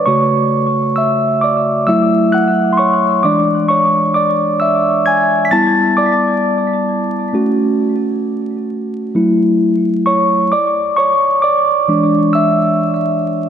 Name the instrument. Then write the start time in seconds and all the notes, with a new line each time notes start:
tine electric piano
0.06 C#3 A3 F#4 C#5 C#6
0.96 E5 E6
1.41 D5 D6
1.87 F#3 A3 E4 E5 E6
2.32 F#5 F#6
2.73 C6
2.77 C#5 C#6
3.23 E3 G#3 D4 D5 D6
3.68 C#5 C#6
4.14 D5 D6
4.60 E5 E6
5.06 G#5 G#6
5.45 B6
5.51 G3 B3 E4 A5 A6
5.97 D5 D6
7.33 A3 C#4 F#4
9.15 F#3 A3 E4
10.06 C#5 C#6
10.52 D5 D6
10.97 C#5 C#6
11.42 D5 D6
11.88 E3 G#3 D4
12.33 E5 E6